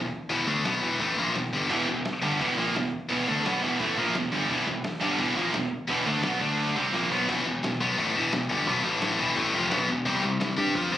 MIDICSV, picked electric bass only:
0, 0, Header, 1, 2, 480
1, 0, Start_track
1, 0, Tempo, 348230
1, 416, Time_signature, 4, 2, 24, 8
1, 15132, End_track
2, 0, Start_track
2, 0, Title_t, "Picked electric bass"
2, 0, Program_c, 0, 34
2, 0, Note_on_c, 0, 28, 79
2, 154, Note_off_c, 0, 28, 0
2, 412, Note_on_c, 0, 28, 96
2, 638, Note_off_c, 0, 28, 0
2, 653, Note_on_c, 0, 38, 88
2, 879, Note_off_c, 0, 38, 0
2, 888, Note_on_c, 0, 35, 85
2, 1117, Note_off_c, 0, 35, 0
2, 1128, Note_on_c, 0, 28, 91
2, 1357, Note_off_c, 0, 28, 0
2, 1374, Note_on_c, 0, 33, 97
2, 1601, Note_off_c, 0, 33, 0
2, 1623, Note_on_c, 0, 34, 91
2, 1839, Note_off_c, 0, 34, 0
2, 1847, Note_on_c, 0, 28, 82
2, 2079, Note_off_c, 0, 28, 0
2, 2085, Note_on_c, 0, 31, 86
2, 2318, Note_off_c, 0, 31, 0
2, 2347, Note_on_c, 0, 28, 100
2, 2570, Note_off_c, 0, 28, 0
2, 2588, Note_on_c, 0, 28, 76
2, 2812, Note_off_c, 0, 28, 0
2, 3063, Note_on_c, 0, 31, 96
2, 3290, Note_off_c, 0, 31, 0
2, 3305, Note_on_c, 0, 28, 91
2, 3531, Note_off_c, 0, 28, 0
2, 3545, Note_on_c, 0, 34, 86
2, 3772, Note_off_c, 0, 34, 0
2, 3789, Note_on_c, 0, 28, 84
2, 4014, Note_off_c, 0, 28, 0
2, 4280, Note_on_c, 0, 28, 97
2, 4501, Note_off_c, 0, 28, 0
2, 4524, Note_on_c, 0, 38, 95
2, 4743, Note_off_c, 0, 38, 0
2, 4755, Note_on_c, 0, 35, 90
2, 4979, Note_off_c, 0, 35, 0
2, 4985, Note_on_c, 0, 28, 101
2, 5214, Note_off_c, 0, 28, 0
2, 5239, Note_on_c, 0, 33, 93
2, 5462, Note_off_c, 0, 33, 0
2, 5481, Note_on_c, 0, 34, 84
2, 5703, Note_off_c, 0, 34, 0
2, 5722, Note_on_c, 0, 28, 88
2, 5944, Note_off_c, 0, 28, 0
2, 5958, Note_on_c, 0, 31, 98
2, 6182, Note_off_c, 0, 31, 0
2, 6196, Note_on_c, 0, 28, 90
2, 6422, Note_off_c, 0, 28, 0
2, 6435, Note_on_c, 0, 28, 85
2, 6661, Note_off_c, 0, 28, 0
2, 6916, Note_on_c, 0, 31, 98
2, 7142, Note_off_c, 0, 31, 0
2, 7152, Note_on_c, 0, 28, 86
2, 7380, Note_off_c, 0, 28, 0
2, 7392, Note_on_c, 0, 34, 87
2, 7620, Note_off_c, 0, 34, 0
2, 7641, Note_on_c, 0, 28, 83
2, 7865, Note_off_c, 0, 28, 0
2, 8115, Note_on_c, 0, 28, 94
2, 8341, Note_off_c, 0, 28, 0
2, 8353, Note_on_c, 0, 38, 93
2, 8580, Note_off_c, 0, 38, 0
2, 8596, Note_on_c, 0, 35, 87
2, 8822, Note_off_c, 0, 35, 0
2, 8835, Note_on_c, 0, 38, 99
2, 9284, Note_off_c, 0, 38, 0
2, 9314, Note_on_c, 0, 36, 81
2, 9537, Note_off_c, 0, 36, 0
2, 9545, Note_on_c, 0, 34, 94
2, 9775, Note_off_c, 0, 34, 0
2, 9800, Note_on_c, 0, 35, 92
2, 10023, Note_off_c, 0, 35, 0
2, 10039, Note_on_c, 0, 28, 101
2, 10262, Note_off_c, 0, 28, 0
2, 10268, Note_on_c, 0, 28, 82
2, 10492, Note_off_c, 0, 28, 0
2, 10500, Note_on_c, 0, 28, 74
2, 10732, Note_off_c, 0, 28, 0
2, 10757, Note_on_c, 0, 35, 104
2, 10980, Note_off_c, 0, 35, 0
2, 10996, Note_on_c, 0, 33, 104
2, 11219, Note_off_c, 0, 33, 0
2, 11236, Note_on_c, 0, 28, 85
2, 11459, Note_off_c, 0, 28, 0
2, 11471, Note_on_c, 0, 28, 93
2, 11695, Note_off_c, 0, 28, 0
2, 11718, Note_on_c, 0, 31, 94
2, 11939, Note_off_c, 0, 31, 0
2, 11954, Note_on_c, 0, 35, 102
2, 12172, Note_off_c, 0, 35, 0
2, 12180, Note_on_c, 0, 33, 100
2, 12630, Note_off_c, 0, 33, 0
2, 12668, Note_on_c, 0, 28, 103
2, 12891, Note_off_c, 0, 28, 0
2, 12910, Note_on_c, 0, 33, 91
2, 13132, Note_off_c, 0, 33, 0
2, 13146, Note_on_c, 0, 29, 87
2, 13369, Note_off_c, 0, 29, 0
2, 13399, Note_on_c, 0, 35, 111
2, 13615, Note_off_c, 0, 35, 0
2, 13628, Note_on_c, 0, 28, 86
2, 13849, Note_off_c, 0, 28, 0
2, 13864, Note_on_c, 0, 36, 106
2, 14086, Note_off_c, 0, 36, 0
2, 14109, Note_on_c, 0, 36, 90
2, 14328, Note_off_c, 0, 36, 0
2, 14351, Note_on_c, 0, 36, 81
2, 14569, Note_off_c, 0, 36, 0
2, 14580, Note_on_c, 0, 43, 110
2, 14802, Note_off_c, 0, 43, 0
2, 14817, Note_on_c, 0, 41, 100
2, 15040, Note_off_c, 0, 41, 0
2, 15059, Note_on_c, 0, 36, 93
2, 15132, Note_off_c, 0, 36, 0
2, 15132, End_track
0, 0, End_of_file